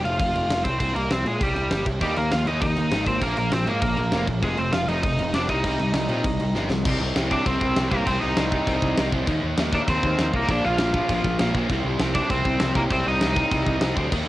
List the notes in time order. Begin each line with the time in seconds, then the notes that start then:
0.04 F1 F4 F5, crash
0.19 F1 F4 F5, kick, crash
0.34 F1, crash
0.49 F1, snare, crash
0.64 C2 C4 C5, kick, crash
0.79 C2 C4 C5, kick, crash
0.95 C2 A#3 A#4, crash
1.10 C2 C4 C5, snare, crash
1.24 A#2 G#3 G#4, crash
1.40 C2 G3 G4, kick, crash
1.55 C2, crash
1.70 G1, snare, crash
1.86 C2, kick, crash
2.01 D#2 D#3 G3 A#3 D#4 G4, kick, crash
2.16 D#2 D#3 A#3 A#4, crash
2.31 D#2 D#3 A#3 F4 F5, snare, crash
2.47 D#2 D#3 A#3 D#4 D#5, crash
2.62 D#2 D#3 A#3 D#4 D#5, kick, crash
2.77 D#2 D#3 A#3, crash
2.92 G#1 D#3 A#3 D#4, snare, crash
3.06 D#3 A#3 C4 C5, kick, crash
3.21 A#1 A#2 F3 A#3 A#4, kick, crash
3.37 A#1 A#2 F3 A#3 A#4, crash
3.52 A#1 A#2 F3 C4 C5, snare, crash
3.67 G#2 A#2 F3 A#3 A#4, crash
3.81 A#1 A#2 F3 A#3 A#4, kick, crash
3.97 A#1 A#2 F3, crash
4.12 F1 A#2 F3 A#3, snare, crash
4.27 A#1 A#2 F3, kick, crash
4.42 F1 F2 C3 F3 G#3 G#4, kick, crash
4.57 F1 F2 C3 C4 C5, crash
4.73 F1 F2 C3 F4 F5, snare, crash
4.88 F1 F2 C3 F3 D#4 D#5, crash
5.03 F1 F2 C3 D#4 D#5, kick, crash
5.19 F1 F2 C3, crash
5.34 F1 F2 C3 F3 D4 D5, snare, crash
5.49 C2 C3 G3 C4 D#4 D#5, kick, crash
5.64 C2 C3 G3 C4, kick, crash
5.79 C2 C3 G3, crash
5.94 C2 C3 G3, snare, crash
6.09 A#2 C3 G3 C4, crash
6.24 C2 C3 G3, kick, crash
6.40 C2 C3 G3, crash
6.55 G1 C3 G3 C4, snare
6.70 C2 C3 G3, snare
6.85 C2 C3 G3 C4, kick, crash
7.01 C2
7.16 C2 C3 G3 C4, snare, crash
7.31 C3 G3 C4 D4 D5, kick
7.46 C2 C3 G3 C4 C5, kick, crash
7.61 C2, kick
7.76 C2 C3 G3 C4, snare, crash
7.91 C2 C3 G3 A#3 C4 A#4, kick
8.06 C2 C3 G3 C4 C5, kick, crash
8.21 C2 D#4 D#5
8.36 C2 C3 G3 C4, snare, crash
8.52 C3 G3 C4, kick
8.67 C2 C3 G3 C4, kick, crash
8.82 C2, kick
8.98 C2 C3 G3 C4, snare, crash
9.12 C2 C3 G3 C4, kick
9.27 D#2 D#3 A#3 D#4, kick, crash
9.43 D#2
9.58 D#2 D#3 A#3 D#4, snare, crash
9.73 D#3 A#3 D4 D#4 D5, kick
9.88 D#2 D#3 A#3 C4 D#4 C5, kick, crash
10.03 D#2, kick
10.18 D#2 D#3 A#3 D#4, snare, crash
10.33 C2 D#3 A#3 D#4 A#4, kick
10.48 A#1 A#2 F3 A#3 D4 D5, kick, crash
10.65 A#1 F4 F5
10.78 A#1 A#2 F3 A#3, snare, crash
10.94 A#2 F3 A#3, kick
11.09 A#1 A#2 F3 A#3, kick, crash
11.24 A#1, kick
11.39 A#1 A#2 F3 A#3, snare, crash
11.54 A#1 A#2 F3 A#3, kick
11.70 C2 C3 G3 C4, kick, crash
11.84 C2
12.00 C2 C3 G3 C4, snare, crash
12.15 C3 G3 C4 D4 D5, kick
12.30 C2 C3 G3 C4 C5, kick, crash
12.45 C2, kick
12.60 C2 C3 G3 C4, snare, crash
12.75 C2 C3 G3 A#3 C4 A#4, kick
12.90 C2 C3 G3 C4 C5, kick, crash
13.06 C2 D#4 D#5
13.21 C2 C3 G3 C4, snare, crash
13.36 C3 G3 C4, kick
13.51 C2 C3 G3 C4, kick, crash
13.66 C2, kick
13.81 C2 C3 G3 C4, snare, crash
13.96 D2 C3 G3 C4, kick
14.12 D#2 D#3 A#3 D#4, kick, crash